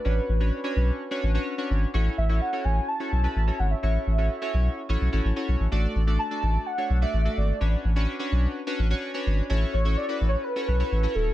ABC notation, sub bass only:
X:1
M:4/4
L:1/16
Q:1/4=127
K:Bdor
V:1 name="Sub bass" clef=bass
A,,,2 A,,,3 z B,,,2 z2 A,,,2 z2 G,,,2 | A,,,2 A,,,3 z A,,,2 z2 B,,,2 A,,,2 G,,,2 | A,,,2 A,,,3 z B,,,2 z A,,, B,,, A,,, A,,, z B,,, A,,, | A,,,2 A,,,3 z A,,,2 z2 B,,,2 A,,,2 G,,,2 |
A,,,2 A,,,3 z B,,,2 z2 A,,,2 z2 G,,,2 | A,,,2 A,,,3 z A,,,2 z2 B,,,2 A,,,2 ^D,,,2 |]